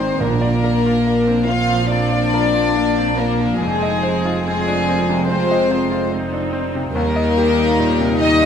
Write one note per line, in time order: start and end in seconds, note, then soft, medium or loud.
0.00 0.20 G#1 medium
0.00 0.20 G#2 medium
0.00 0.22 D#3 soft
0.00 0.17 C4 medium
0.00 0.22 C4 soft
0.00 0.22 D4 soft
0.00 0.19 D#4 medium
0.00 0.22 G#4 soft
0.00 0.16 C5 medium
0.00 0.22 C5 soft
0.00 0.22 D#5 soft
0.19 3.55 A#1 medium
0.19 1.43 A#2 medium
0.19 1.85 A#2 soft
0.19 3.56 A#2 medium
0.19 1.47 A#3 medium
0.19 1.03 D4 soft
0.19 1.47 A#4 medium
0.41 0.75 D5 medium
0.64 0.97 A#4 soft
0.86 1.19 F4 soft
1.04 1.39 A#3 soft
1.04 1.46 D4 medium
1.27 1.48 C4 soft
1.46 1.81 A#3 soft
1.46 2.75 C4 medium
1.46 1.89 F4 medium
1.46 1.90 F4 medium
1.46 1.89 F5 medium
1.69 2.03 F3 soft
1.87 3.13 D4 medium
1.87 3.17 D4 medium
1.87 2.75 F4 medium
1.87 3.14 D5 medium
1.91 2.24 A#3 soft
2.12 2.45 D5 soft
2.34 2.67 A#4 medium
2.54 2.88 F4 soft
2.75 3.17 A#3 medium
2.75 3.09 A#3 soft
2.75 3.16 D4 medium
2.98 3.18 C4 soft
3.16 3.59 A#3 medium
3.16 3.60 A#3 medium
3.16 3.52 A#3 medium
3.16 3.60 D4 medium
3.16 3.59 A#4 medium
3.40 3.60 F3 soft
3.58 6.94 F1 medium
3.58 6.95 F2 medium
3.58 5.25 F2 soft
3.58 4.42 G#3 medium
3.58 4.41 G#3 medium
3.58 4.42 C4 medium
3.58 4.44 D#4 medium
3.58 4.42 G#4 medium
3.83 4.16 D#5 soft
4.03 4.37 C5 soft
4.25 4.58 F4 soft
4.43 5.25 G#3 medium
4.43 5.26 G#3 medium
4.43 4.86 C4 medium
4.43 5.26 F4 medium
4.43 5.26 G#4 medium
4.47 4.79 C4 soft
4.67 4.87 D4 soft
4.87 5.28 A#3 medium
4.87 5.21 C4 soft
5.09 5.41 C3 medium
5.26 6.11 G#3 medium
5.26 6.10 C4 medium
5.26 6.11 C4 medium
5.26 6.09 F4 medium
5.26 6.08 C5 medium
5.30 5.62 C4 soft
5.51 5.83 D#5 medium
5.71 6.03 C5 medium
5.92 6.24 F4 soft
6.10 6.94 C4 medium
6.10 6.45 C4 soft
6.10 6.92 D#4 medium
6.33 6.53 D4 soft
6.53 6.86 C4 medium
6.75 6.95 C3 soft
6.93 8.46 D#2 medium
6.93 8.46 G3 medium
6.93 8.16 A#3 medium
6.93 8.17 A#3 medium
6.93 8.46 D#4 medium
6.93 8.16 A#4 loud
7.16 7.49 D#5 medium
7.38 7.71 G4 medium
7.59 7.92 D#4 medium
7.79 8.12 A#2 medium
8.00 8.21 C3 soft
8.19 8.46 D#4 medium
8.19 8.46 D#4 soft
8.19 8.46 D#4 medium
8.19 8.46 D#5 loud
8.42 8.46 A#2 medium